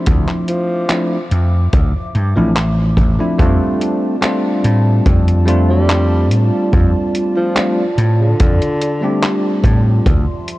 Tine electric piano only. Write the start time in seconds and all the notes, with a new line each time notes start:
Already playing: F3 A3 C4 D4 E4
0.88 F3 A3 C4 D4 E4
2.36 F3 A3 C4 D4 E4
3.19 F3 A3 C4 D4 E4
3.38 G3 A3 C4 D4 F4
4.21 G3 A3 C4 D4 F4
5.46 G3 A3 C4 D4 F4
7.55 G3 A3 C4 D4 F4
9.01 G3 A3 C4 D4 G4